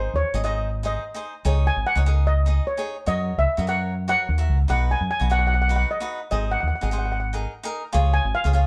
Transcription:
Already playing: cavaquinho D#4 G#4 C5, steel pan C5
0.13 fingered electric bass D#2, steel pan C#5
0.34 fingered electric bass G#1, cavaquinho D#4 G#4 D#5
0.44 cavaquinho D#4 G#4 C5, steel pan D#5
0.83 cavaquinho D#4 G#4 C5, steel pan D#5
1.14 cavaquinho D#4 G#4 C5
1.45 fingered electric bass C#2, cavaquinho D#4 G#4 C#5
1.67 steel pan G#5
1.76 fingered electric bass G#1
1.87 steel pan F#5
1.95 fingered electric bass C#2, cavaquinho D#4 G#4 C#5
2.06 cavaquinho D#4 G#4 A#4
2.27 steel pan D#5
2.46 cavaquinho D#4 G#4 D#5
2.67 steel pan C#5
2.77 cavaquinho D#4 G#4 C#5
3.06 fingered electric bass F#2, cavaquinho F#4 A#4 C#5, steel pan D#5
3.38 fingered electric bass C#2, steel pan E5
3.57 fingered electric bass F#2, cavaquinho F#4 A#4 D#5
3.67 cavaquinho F#4 A#4 C#5, steel pan F#5
4.08 cavaquinho F#4 A#4 C#5, steel pan F#5
4.29 fingered electric bass D#2
4.38 cavaquinho F#4 A#4 E5
4.49 fingered electric bass C#2
4.68 fingered electric bass B1, cavaquinho D#4 F#4 B4, steel pan F#5
4.91 steel pan G#5
5.01 fingered electric bass F#2
5.11 steel pan G#5
5.20 fingered electric bass B1, cavaquinho D#4 F#4 B4
5.30 cavaquinho D#4 F#4 C#5, steel pan F#5
5.39 steel pan F#5
5.47 steel pan F#5
5.54 steel pan F#5
5.62 steel pan F#5
5.68 cavaquinho D#4 F#4 B4, steel pan F#5
5.76 steel pan F#5
5.91 steel pan D#5
6.00 cavaquinho D#4 F#4 B4
6.31 fingered electric bass G#1, cavaquinho D#4 G#4 C5, steel pan D#5
6.51 steel pan F#5
6.60 fingered electric bass D#2, steel pan F#5
6.68 steel pan F#5
6.75 steel pan F#5
6.81 fingered electric bass G#1, cavaquinho D#4 G#4 A#4, steel pan F#5
6.91 cavaquinho D#4 G#4 C5, steel pan F#5
6.98 steel pan F#5
7.06 steel pan F#5
7.12 steel pan F#5
7.20 steel pan F#5
7.33 cavaquinho D#4 G#4 A#4
7.63 cavaquinho D#4 G#4 A#4
7.93 fingered electric bass C#2, cavaquinho F4 G#4 C#5
8.14 steel pan G#5
8.25 fingered electric bass G#1
8.35 steel pan F5
8.44 fingered electric bass C#2, cavaquinho F4 G#4 C#5
8.53 cavaquinho F4 G#4 C#5

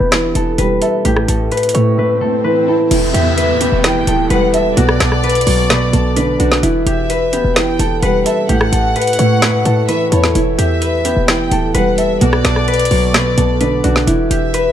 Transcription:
Already playing: felt piano E3 B3, harp E4 G4 A4 B4
0.00 808-style bass E1
0.12 felt piano E3, finger snap, snare, closed hi-hat
0.35 808-style bass E1, felt piano E3, harp A4, closed hi-hat
0.58 808-style bass E1, felt piano G3, harp B4, closed hi-hat
0.82 harp A4, felt piano E5, closed hi-hat
1.05 808-style bass A1, felt piano A2, harp G4, closed hi-hat, swell
1.17 cross-stick
1.28 808-style bass A1, harp A4, closed hi-hat
1.52 harp B4, closed hi-hat
1.57 closed hi-hat
1.63 closed hi-hat
1.69 closed hi-hat
1.74 808-style bass A2, felt piano A3, harp C#5, closed hi-hat
1.98 felt piano A2, harp B4
2.21 felt piano A2, harp A4
2.44 felt piano E3, harp B4
2.68 felt piano E4, harp A4
2.91 808-style bass E1, felt piano E3, harp E4, closed hi-hat, crash, downlifter
3.14 808-style bass E2, harp G4, violin section E5, closed hi-hat
3.37 harp B4, closed hi-hat
3.61 felt piano B3, harp G4, closed hi-hat
3.72 808-style bass E1
3.84 felt piano E3, violin section G5, finger snap, snare, closed hi-hat
4.07 808-style bass D1, felt piano E3, harp A4, closed hi-hat
4.30 808-style bass E1, felt piano G3, harp B4, violin section F#5, closed hi-hat
4.54 harp A4, felt piano E5, violin section E5, closed hi-hat
4.77 808-style bass B1, felt piano B2, harp F#4, violin section D5, closed hi-hat
4.89 cross-stick
5.00 808-style bass B1, harp A4, finger snap, snare, closed hi-hat
5.12 cross-stick
5.24 harp B4, closed hi-hat
5.29 closed hi-hat
5.35 closed hi-hat
5.41 closed hi-hat
5.47 808-style bass B1, felt piano F#3, harp C#5, open hi-hat
5.70 felt piano B2, harp B4, finger snap, snare, closed hi-hat
5.93 808-style bass B1, felt piano B2, harp A4, closed hi-hat
6.16 felt piano D3, harp B4, closed hi-hat
6.40 808-style bass B1, felt piano D4, harp F#4, closed hi-hat
6.52 snare
6.63 808-style bass E1, felt piano E3, harp E4, closed hi-hat
6.86 808-style bass E1, harp G4, violin section E5, closed hi-hat
7.10 harp B4, closed hi-hat
7.33 808-style bass D1, felt piano B3, harp G4, closed hi-hat
7.45 808-style bass E1
7.56 felt piano E3, violin section G5, finger snap, snare, closed hi-hat
7.79 808-style bass E1, felt piano E3, harp A4, closed hi-hat
8.03 808-style bass E1, felt piano G3, harp B4, violin section F#5, closed hi-hat
8.26 harp A4, felt piano E5, violin section E5, closed hi-hat
8.49 808-style bass A1, felt piano A2, harp G4, violin section F#5, closed hi-hat
8.61 cross-stick
8.72 808-style bass A1, harp A4, closed hi-hat
8.96 harp B4, closed hi-hat
9.02 closed hi-hat
9.07 closed hi-hat
9.13 closed hi-hat
9.19 808-style bass A2, felt piano A3, harp C#5, closed hi-hat
9.42 felt piano A2, harp B4, finger snap, snare, closed hi-hat
9.65 felt piano A2, 808-style bass A2, harp A4, closed hi-hat
9.88 felt piano E3, harp B4, violin section E5, closed hi-hat
10.12 808-style bass E2, felt piano E4, harp A4, violin section C#5, closed hi-hat
10.24 snare, closed hi-hat
10.35 808-style bass E1, felt piano E3, harp E4, closed hi-hat
10.58 808-style bass E2, harp G4, violin section E5, closed hi-hat
10.82 harp B4, closed hi-hat
11.05 felt piano B3, harp G4, closed hi-hat
11.17 808-style bass E1
11.28 felt piano E3, violin section G5, finger snap, snare, closed hi-hat
11.51 808-style bass D1, felt piano E3, harp A4, closed hi-hat
11.74 808-style bass E1, felt piano G3, harp B4, violin section F#5, closed hi-hat
11.98 harp A4, felt piano E5, violin section E5, closed hi-hat
12.21 808-style bass B1, felt piano B2, harp F#4, violin section D5, closed hi-hat
12.33 cross-stick
12.44 808-style bass B1, harp A4, finger snap, snare, closed hi-hat
12.56 cross-stick
12.68 harp B4, closed hi-hat
12.74 closed hi-hat
12.79 closed hi-hat
12.85 closed hi-hat
12.91 808-style bass B1, felt piano F#3, harp C#5, open hi-hat
13.14 felt piano B2, harp B4, finger snap, snare, closed hi-hat
13.37 808-style bass B1, felt piano B2, harp A4, closed hi-hat
13.61 felt piano D3, harp B4, closed hi-hat
13.84 808-style bass B1, felt piano D4, harp F#4, closed hi-hat
13.96 snare
14.07 808-style bass E1, felt piano E3, harp E4, closed hi-hat
14.31 808-style bass E1, harp G4, violin section E5, closed hi-hat
14.54 harp B4, closed hi-hat

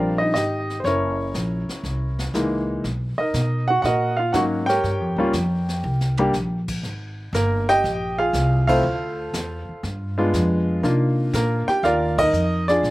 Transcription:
Already playing: upright bass A#1, grand piano F3 G3 C4 D4 F4 A#4 D5
0.18 grand piano D#4 D#5
0.34 upright bass G#1, grand piano D#4 G4 D#5, snare, hi-hat pedal
0.70 snare
0.80 grand piano C5
0.84 upright bass F#1, grand piano C#4 E4 A#4 C#5, brush sweep, snare
1.34 upright bass A#1, snare, hi-hat pedal
1.69 muted upright bass stroke, snare
1.83 upright bass C2, brush sweep, snare
2.19 snare
2.34 upright bass C#2, grand piano E3 G#3 A#3 D#4, snare, hi-hat pedal
2.84 upright bass B1, brush sweep, snare
3.18 grand piano D#4 A#4 D#5, muted upright bass stroke
3.34 upright bass B2, snare, hi-hat pedal
3.68 grand piano F#4 F#5
3.82 upright bass A#2, grand piano F#4 A#4 D#5 F#5, brush sweep, snare
4.17 grand piano F4 F5
4.33 upright bass G#2, grand piano F#3 A#3 C#4 D#4 F#4 F#5, snare, hi-hat pedal
4.66 grand piano G4 A#4 C#5 G5, snare
4.84 upright bass G2, brush sweep, snare
5.00 upright bass F2
5.16 upright bass C#2, grand piano G3 A#3 C#4 F4
5.33 upright bass F2, snare, hi-hat pedal
5.69 snare
5.84 upright bass C2
6.01 snare
6.17 grand piano G3 A#3 D4 G4, floor tom
6.33 upright bass A#1, snare, hi-hat pedal
6.68 kick, crash
6.83 upright bass G#1, brush sweep, snare
7.33 upright bass G1, grand piano A#3 A#4, snare, hi-hat pedal
7.69 grand piano G4 D#5 G5, snare
7.84 upright bass A#1, brush sweep, snare
8.19 grand piano F4 G#4 F5
8.33 upright bass C2, snare, hi-hat pedal
8.67 grand piano A3 C4 E4 F4 A4 C5 F5, kick, crash
8.83 upright bass D2, brush sweep
9.33 upright bass E2, snare, hi-hat pedal
9.69 muted upright bass stroke
9.83 upright bass G2, brush sweep, snare
10.18 grand piano G#3 B3 D4 F4
10.33 upright bass F2, snare, hi-hat pedal
10.83 upright bass C3, grand piano A#3 D4 D#4 F4, brush sweep, snare
11.33 upright bass A#2, grand piano A#3 A#4, snare, hi-hat pedal
11.68 grand piano G4 G5, muted upright bass stroke, snare
11.83 upright bass D#2, grand piano F4 A#4 D5 F5, brush sweep, snare
12.18 grand piano D#4 A#4 D#5, kick, crash
12.33 upright bass F2, hi-hat pedal
12.68 grand piano D4 F4 G#4 D5, snare
12.83 upright bass A#2, brush sweep, snare

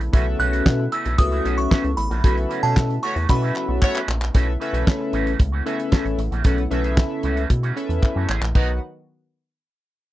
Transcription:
Already playing: analog synth pad C#3 A3 B3 E4
0.01 muted clean electric guitar stroke, closed hi-hat
0.13 analog synth bass B1, clean electric guitar E3 A3 C#4 F#4, analog polysynth C#4 F#4 A4 B4 E5, kick, closed hi-hat
0.26 muted clean electric guitar stroke
0.39 analog synth bass B1, clean electric guitar E3 A3 C#4 F#4, synth bell F#6, closed hi-hat
0.52 clean electric guitar E3 A3 C#4 F#4, closed hi-hat
0.66 analog synth bass B2, kick, snare, clap
0.79 muted clean electric guitar stroke
0.92 clean electric guitar E3 A3 C#4 F#4, synth bell E6, closed hi-hat
1.05 analog synth bass B1, clean electric guitar E3 A3 C#4 F#4, closed hi-hat
1.18 analog synth bass C#2, analog polysynth C#4 F#4 A4 B4 E5, synth bell D#6, muted clean electric guitar stroke, kick, closed hi-hat
1.31 clean electric guitar E3 A3 C#4 F#4, closed hi-hat
1.44 analog synth bass B1, clean electric guitar E3 A3 C#4 F#4, closed hi-hat
1.58 synth bell C#6, muted clean electric guitar stroke, closed hi-hat
1.71 clean electric guitar E3 A3 C#4 F#4, kick, snare, clap
1.84 analog synth bass C#2, muted clean electric guitar stroke, closed hi-hat
1.97 analog synth bass A1, synth bell B5, muted clean electric guitar stroke, closed hi-hat
2.10 analog synth bass A#1, clean electric guitar E3 A3 C#4 F#4, closed hi-hat
2.23 analog synth bass B1, clean electric guitar E3 A3 C#4 F#4, analog polysynth C#4 F#4 A4 B4 E5, kick, closed hi-hat
2.36 muted clean electric guitar stroke, closed hi-hat
2.49 clean electric guitar E3 A3 C#4 F#4, closed hi-hat
2.63 analog synth bass B2, clean electric guitar E3 A3 C#4 G#4, synth bell A5, closed hi-hat
2.77 analog synth bass B2, kick, snare, clap
2.89 muted clean electric guitar stroke, closed hi-hat
3.02 clean electric guitar E3 A3 C#4 F#4, horn section A3 F#4 C#5, synth bell C#6, closed hi-hat
3.16 analog synth bass E2, clean electric guitar E3 A3 C#4 F#4, closed hi-hat
3.29 analog synth bass B2, analog polysynth C#4 F#4 A4 B4 E5, synth bell B5, kick, clap
3.42 clean electric guitar E3 A3 C#4 F#4
3.55 muted clean electric guitar stroke, clap
3.68 analog synth bass B1, muted clean electric guitar stroke
3.81 horn section A3 F#4 C#5, muted clean electric guitar stroke, kick, clap
3.95 clean electric guitar E3 A3 C#4 F#4, clap
4.08 analog synth bass A#1, muted clean electric guitar stroke, clap
4.21 muted clean electric guitar stroke, clap
4.34 analog synth bass B1, analog synth pad C#3 A3 B3 E4, clean electric guitar E3 A3 C#4 F#4, analog polysynth C#4 A4 B4 E5, kick, closed hi-hat
4.47 muted clean electric guitar stroke
4.60 clean electric guitar E3 A3 C#4 F#4, analog polysynth C#4 A4 B4 E5, closed hi-hat
4.73 analog synth bass B1, clean electric guitar E3 A3 C#4 F#4, closed hi-hat
4.87 muted clean electric guitar stroke, kick, snare, clap
5.00 muted clean electric guitar stroke
5.13 analog synth bass A1, clean electric guitar E3 A3 C#4 F#4, closed hi-hat
5.26 clean electric guitar E3 A3 C#4 F#4, closed hi-hat
5.39 analog synth bass C#2, muted clean electric guitar stroke, kick, closed hi-hat
5.52 clean electric guitar E3 A3 C#4 F#4
5.66 clean electric guitar E3 A3 C#4 F#4, analog polysynth C#4 A4 B4 E5, closed hi-hat
5.79 muted clean electric guitar stroke, closed hi-hat
5.92 clean electric guitar E3 A3 C#4 F#4, kick, snare, clap
6.05 analog synth bass A1, muted clean electric guitar stroke, closed hi-hat
6.18 analog synth bass A1, muted clean electric guitar stroke, closed hi-hat
6.31 analog synth bass A#1, clean electric guitar E3 A3 C#4 F#4, closed hi-hat
6.44 analog synth bass B1, clean electric guitar E3 A3 C#4 F#4, analog polysynth C#4 A4 B4 F#5, kick, closed hi-hat
6.58 muted clean electric guitar stroke, closed hi-hat
6.71 analog synth bass B1, clean electric guitar E3 A3 C#4 F#4, analog polysynth C#4 A4 B4 E5, closed hi-hat
6.84 clean electric guitar E3 A3 C#4 G#4, closed hi-hat
6.97 kick, snare, clap
7.10 muted clean electric guitar stroke
7.23 analog synth bass C#2, clean electric guitar E3 A3 C#4 F#4, closed hi-hat
7.36 clean electric guitar E3 A3 C#4 F#4, closed hi-hat
7.50 analog synth bass B2, muted clean electric guitar stroke, kick, closed hi-hat
7.63 clean electric guitar E3 A3 C#4 F#4, closed hi-hat
7.76 analog polysynth C#4 A4 B4 E5, muted clean electric guitar stroke, closed hi-hat
7.89 analog synth bass E2, muted clean electric guitar stroke, closed hi-hat
8.02 muted clean electric guitar stroke, kick, clap
8.16 analog synth bass F#2, clean electric guitar E3 A3 C#4 F#4
8.29 analog synth bass A1, clean electric guitar E3 A3 C#4 G#4, clap
8.42 analog synth bass A#1, muted clean electric guitar stroke, clap
8.55 analog synth bass B1, analog synth pad D#3 F#3 B3 F#4, clean electric guitar F#3 B3 D#4 F#4, analog polysynth D#4 F#4 B4 F#5, kick, crash

